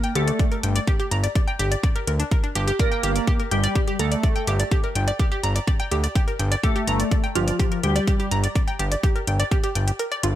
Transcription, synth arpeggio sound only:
0.04 G5
0.15 G4
0.28 D5
0.39 D5
0.52 A#4
0.63 G5
0.76 D5
0.87 G4
1.00 G4
1.11 A#5
1.24 D5
1.35 D5
1.48 G5
1.59 G4
1.72 D5
1.83 D5
1.96 A#4
2.07 A#4
2.20 D4
2.31 A#4
2.44 D4
2.55 G4
2.68 G4
2.79 D5
2.92 G5
3.03 G4
3.16 D5
3.27 G4
3.40 A#4
3.51 G5
3.64 D5
3.75 G4
3.88 G4
3.99 A#5
4.12 D5
4.23 D5
4.36 G5
4.47 G4
4.60 D5
4.71 G4
4.84 A#4
4.96 G5
5.08 D5
5.19 G4
5.32 G4
5.44 A#5
5.56 D5
5.67 D5
5.80 G5
5.91 G4
6.04 D5
6.15 G4
6.28 A#4
6.39 G5
6.52 D5
6.63 G4
6.76 G4
6.87 A#5
7.00 D5
7.11 D5
7.24 G5
7.35 G4
7.48 D5
7.59 G4
7.72 A#4
7.83 G5
7.96 D5
8.07 G4
8.20 G4
8.31 A#5
8.44 D5
8.55 D5
8.68 G5
8.79 G4
8.92 D5
9.03 G4
9.16 A#4
9.27 G5
9.40 D5
9.51 G4
9.64 G4
9.75 G5
9.88 G4
9.99 A#4
10.12 D5
10.23 F4

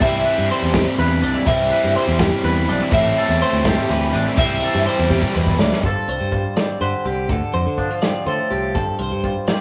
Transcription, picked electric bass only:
0.01 C2
0.38 G2
0.62 E2
0.99 E2
1.23 C2
1.47 C2
1.84 G2
2.08 E2
2.43 E2
2.68 B1
2.92 A1
3.29 E2
3.53 D2
3.89 D2
4.13 A1
4.38 C2
4.75 G2
4.99 E2
5.36 E2
5.60 D2
5.83 G1
6.09 C2
6.21 G2
6.81 G2
7.05 C2
7.29 D2
7.54 F2
7.66 D3
8.26 D3
8.51 C2
8.75 G1
8.99 C2
9.12 G2

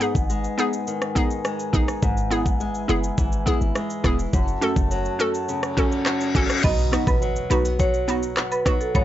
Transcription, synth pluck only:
0.00 B3 D#4 G#4
0.58 B3 D#4 G#4
1.15 B3 D#4 G#4
1.73 B3 D#4 G#4
2.31 B3 E4 G#4
2.88 B3 E4 G#4
3.46 B3 E4 G#4
4.04 B3 E4 G#4
4.61 C#4 F#4 A4
5.19 C#4 F#4 A4
5.77 C#4 F#4 A4
6.35 C#4 F#4 A4
6.92 B3 D#4 F#4
7.50 B3 D#4 F#4
8.08 B3 D#4 F#4
8.65 B3 D#4 F#4

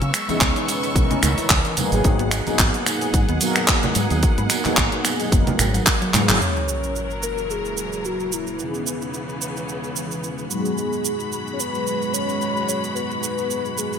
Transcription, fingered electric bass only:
0.02 C#3
0.29 muted fingered electric bass stroke
0.41 C#2
0.96 B1
1.23 C#2
1.50 C#2
1.78 muted fingered electric bass stroke
1.92 G#1
2.05 G#1
2.47 muted fingered electric bass stroke
2.59 G#1
3.14 G#2
3.29 D#2
3.96 G#2
4.11 D#2
4.23 muted fingered electric bass stroke
4.38 G#2
4.65 muted fingered electric bass stroke
4.77 G#1
5.32 F#1
5.59 G#1
6.14 G#2
6.29 G#1

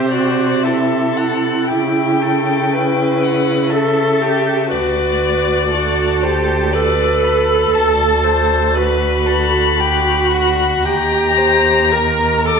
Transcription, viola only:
Already playing: G4
0.12 F#4
0.64 E4
2.73 E4
3.72 A4
4.22 G4
4.72 F#4
5.74 F#4
6.24 G4
6.74 A4
8.77 F#4
9.81 F#4
10.85 G4
11.92 A#4
12.45 A4

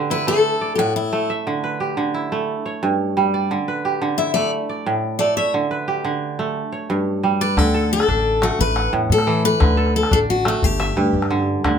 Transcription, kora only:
Already playing: D3 A3 G4 B4 D5
0.10 E4
0.27 A3
0.61 D5
0.78 A2
1.13 A3
1.30 E5
1.47 D3
1.64 B4
1.80 G4
1.97 D3
2.14 E4
2.32 A3
2.66 C#5
2.83 G2
3.17 G3
3.34 D5
3.51 D3
3.68 B4
3.85 G4
4.02 D3
4.19 E4
4.35 A3
4.69 D5
4.86 A2
5.20 A3
5.37 E5
5.54 D3
5.71 B4
5.88 G4
6.05 D3
6.39 A3
6.72 C#5
6.90 G2
7.23 G3
7.41 D5
7.57 D3
7.74 A4
8.08 D4
8.42 A3
8.76 F#5
8.93 A2
9.27 E3
9.60 D3
9.77 A4
10.11 D4
10.46 A3
10.80 E5
10.97 G2
11.30 D3
11.65 D3

